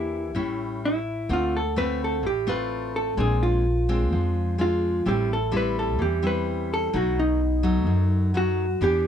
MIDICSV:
0, 0, Header, 1, 4, 480
1, 0, Start_track
1, 0, Tempo, 470219
1, 1323, Time_signature, 4, 2, 24, 8
1, 9260, End_track
2, 0, Start_track
2, 0, Title_t, "Hollow-body jazz guitar"
2, 0, Program_c, 0, 26
2, 0, Note_on_c, 0, 64, 71
2, 822, Note_off_c, 0, 64, 0
2, 872, Note_on_c, 0, 64, 66
2, 1351, Note_off_c, 0, 64, 0
2, 1360, Note_on_c, 0, 65, 68
2, 1588, Note_off_c, 0, 65, 0
2, 1598, Note_on_c, 0, 69, 65
2, 1812, Note_off_c, 0, 69, 0
2, 1816, Note_on_c, 0, 71, 79
2, 2056, Note_off_c, 0, 71, 0
2, 2085, Note_on_c, 0, 69, 67
2, 2310, Note_off_c, 0, 69, 0
2, 2312, Note_on_c, 0, 67, 76
2, 2544, Note_off_c, 0, 67, 0
2, 2544, Note_on_c, 0, 71, 76
2, 3018, Note_off_c, 0, 71, 0
2, 3022, Note_on_c, 0, 69, 71
2, 3258, Note_off_c, 0, 69, 0
2, 3268, Note_on_c, 0, 68, 69
2, 3498, Note_on_c, 0, 65, 71
2, 3501, Note_off_c, 0, 68, 0
2, 4696, Note_off_c, 0, 65, 0
2, 4709, Note_on_c, 0, 65, 77
2, 5186, Note_off_c, 0, 65, 0
2, 5190, Note_on_c, 0, 67, 73
2, 5399, Note_off_c, 0, 67, 0
2, 5442, Note_on_c, 0, 69, 75
2, 5668, Note_off_c, 0, 69, 0
2, 5683, Note_on_c, 0, 71, 79
2, 5906, Note_off_c, 0, 71, 0
2, 5911, Note_on_c, 0, 69, 67
2, 6142, Note_off_c, 0, 69, 0
2, 6143, Note_on_c, 0, 67, 73
2, 6355, Note_off_c, 0, 67, 0
2, 6397, Note_on_c, 0, 71, 75
2, 6872, Note_off_c, 0, 71, 0
2, 6876, Note_on_c, 0, 69, 79
2, 7105, Note_off_c, 0, 69, 0
2, 7105, Note_on_c, 0, 66, 68
2, 7339, Note_off_c, 0, 66, 0
2, 7345, Note_on_c, 0, 63, 70
2, 8545, Note_on_c, 0, 66, 79
2, 8568, Note_off_c, 0, 63, 0
2, 9017, Note_off_c, 0, 66, 0
2, 9022, Note_on_c, 0, 67, 75
2, 9258, Note_off_c, 0, 67, 0
2, 9260, End_track
3, 0, Start_track
3, 0, Title_t, "Nylon-string guitar"
3, 0, Program_c, 1, 24
3, 0, Note_on_c, 1, 52, 47
3, 0, Note_on_c, 1, 58, 49
3, 0, Note_on_c, 1, 62, 55
3, 0, Note_on_c, 1, 67, 62
3, 329, Note_off_c, 1, 58, 0
3, 330, Note_off_c, 1, 62, 0
3, 332, Note_off_c, 1, 67, 0
3, 339, Note_off_c, 1, 52, 0
3, 354, Note_on_c, 1, 45, 47
3, 355, Note_on_c, 1, 55, 43
3, 361, Note_on_c, 1, 61, 53
3, 365, Note_on_c, 1, 64, 52
3, 1002, Note_off_c, 1, 55, 0
3, 1007, Note_off_c, 1, 61, 0
3, 1009, Note_off_c, 1, 64, 0
3, 1294, Note_off_c, 1, 45, 0
3, 1320, Note_on_c, 1, 50, 53
3, 1324, Note_on_c, 1, 57, 55
3, 1327, Note_on_c, 1, 60, 52
3, 1332, Note_on_c, 1, 65, 53
3, 1632, Note_off_c, 1, 57, 0
3, 1632, Note_off_c, 1, 60, 0
3, 1633, Note_off_c, 1, 65, 0
3, 1801, Note_on_c, 1, 57, 52
3, 1812, Note_on_c, 1, 60, 61
3, 1812, Note_on_c, 1, 65, 56
3, 2258, Note_off_c, 1, 50, 0
3, 2276, Note_on_c, 1, 45, 48
3, 2278, Note_off_c, 1, 57, 0
3, 2283, Note_off_c, 1, 65, 0
3, 2284, Note_off_c, 1, 60, 0
3, 2519, Note_on_c, 1, 57, 54
3, 2524, Note_on_c, 1, 60, 50
3, 2528, Note_on_c, 1, 65, 66
3, 3201, Note_off_c, 1, 57, 0
3, 3204, Note_off_c, 1, 60, 0
3, 3205, Note_off_c, 1, 65, 0
3, 3214, Note_off_c, 1, 45, 0
3, 3237, Note_on_c, 1, 46, 48
3, 3242, Note_on_c, 1, 56, 47
3, 3247, Note_on_c, 1, 60, 49
3, 3251, Note_on_c, 1, 62, 61
3, 3718, Note_off_c, 1, 56, 0
3, 3721, Note_off_c, 1, 60, 0
3, 3723, Note_off_c, 1, 62, 0
3, 3969, Note_on_c, 1, 56, 56
3, 3973, Note_on_c, 1, 60, 57
3, 3976, Note_on_c, 1, 62, 57
3, 4174, Note_off_c, 1, 46, 0
3, 4211, Note_on_c, 1, 53, 46
3, 4646, Note_off_c, 1, 56, 0
3, 4648, Note_off_c, 1, 62, 0
3, 4649, Note_off_c, 1, 60, 0
3, 4679, Note_on_c, 1, 56, 48
3, 4684, Note_on_c, 1, 60, 49
3, 4690, Note_on_c, 1, 62, 54
3, 5121, Note_off_c, 1, 56, 0
3, 5123, Note_off_c, 1, 60, 0
3, 5127, Note_off_c, 1, 62, 0
3, 5141, Note_off_c, 1, 53, 0
3, 5161, Note_on_c, 1, 55, 48
3, 5166, Note_on_c, 1, 45, 50
3, 5168, Note_on_c, 1, 60, 54
3, 5171, Note_on_c, 1, 64, 57
3, 5470, Note_off_c, 1, 55, 0
3, 5473, Note_off_c, 1, 60, 0
3, 5475, Note_off_c, 1, 64, 0
3, 5631, Note_on_c, 1, 55, 52
3, 5636, Note_on_c, 1, 60, 56
3, 5645, Note_on_c, 1, 64, 58
3, 6099, Note_off_c, 1, 45, 0
3, 6112, Note_on_c, 1, 52, 50
3, 6317, Note_off_c, 1, 55, 0
3, 6321, Note_off_c, 1, 60, 0
3, 6322, Note_off_c, 1, 64, 0
3, 6355, Note_on_c, 1, 55, 49
3, 6359, Note_on_c, 1, 60, 57
3, 6365, Note_on_c, 1, 64, 56
3, 7039, Note_off_c, 1, 55, 0
3, 7040, Note_off_c, 1, 60, 0
3, 7044, Note_off_c, 1, 64, 0
3, 7052, Note_off_c, 1, 52, 0
3, 7075, Note_on_c, 1, 47, 50
3, 7080, Note_on_c, 1, 54, 50
3, 7080, Note_on_c, 1, 57, 52
3, 7086, Note_on_c, 1, 63, 55
3, 7557, Note_off_c, 1, 57, 0
3, 7558, Note_off_c, 1, 54, 0
3, 7559, Note_off_c, 1, 63, 0
3, 7791, Note_on_c, 1, 54, 55
3, 7793, Note_on_c, 1, 57, 58
3, 7802, Note_on_c, 1, 63, 60
3, 8014, Note_off_c, 1, 47, 0
3, 8032, Note_on_c, 1, 42, 46
3, 8478, Note_off_c, 1, 54, 0
3, 8478, Note_off_c, 1, 57, 0
3, 8483, Note_off_c, 1, 63, 0
3, 8514, Note_on_c, 1, 54, 53
3, 8524, Note_on_c, 1, 57, 51
3, 8525, Note_on_c, 1, 63, 54
3, 8826, Note_off_c, 1, 54, 0
3, 8831, Note_off_c, 1, 63, 0
3, 8832, Note_off_c, 1, 57, 0
3, 8973, Note_off_c, 1, 42, 0
3, 8998, Note_on_c, 1, 52, 50
3, 8999, Note_on_c, 1, 59, 54
3, 9001, Note_on_c, 1, 62, 53
3, 9007, Note_on_c, 1, 67, 55
3, 9260, Note_off_c, 1, 52, 0
3, 9260, Note_off_c, 1, 59, 0
3, 9260, Note_off_c, 1, 62, 0
3, 9260, Note_off_c, 1, 67, 0
3, 9260, End_track
4, 0, Start_track
4, 0, Title_t, "Upright bass"
4, 0, Program_c, 2, 32
4, 0, Note_on_c, 2, 40, 78
4, 352, Note_off_c, 2, 40, 0
4, 352, Note_on_c, 2, 33, 78
4, 1276, Note_off_c, 2, 33, 0
4, 1320, Note_on_c, 2, 38, 77
4, 2284, Note_off_c, 2, 38, 0
4, 2284, Note_on_c, 2, 33, 73
4, 3201, Note_off_c, 2, 33, 0
4, 3239, Note_on_c, 2, 34, 83
4, 4206, Note_off_c, 2, 34, 0
4, 4206, Note_on_c, 2, 41, 75
4, 5122, Note_off_c, 2, 41, 0
4, 5168, Note_on_c, 2, 33, 72
4, 6121, Note_off_c, 2, 33, 0
4, 6121, Note_on_c, 2, 40, 73
4, 7039, Note_off_c, 2, 40, 0
4, 7082, Note_on_c, 2, 35, 81
4, 8032, Note_off_c, 2, 35, 0
4, 8032, Note_on_c, 2, 42, 80
4, 8956, Note_off_c, 2, 42, 0
4, 8991, Note_on_c, 2, 40, 81
4, 9260, Note_off_c, 2, 40, 0
4, 9260, End_track
0, 0, End_of_file